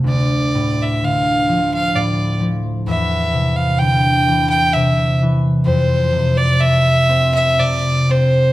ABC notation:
X:1
M:3/4
L:1/16
Q:1/4=64
K:Flyd
V:1 name="Fiddle"
d3 e f3 f d2 z2 | e3 f g3 g e2 z2 | c3 d e3 e d2 c2 |]
V:2 name="Harp" clef=bass
D,,2 A,,2 D,2 F,2 A,,2 F,2 | E,,2 C,2 D,2 E,2 C,2 E,2 | F,,2 C,2 A,2 C2 C,2 C2 |]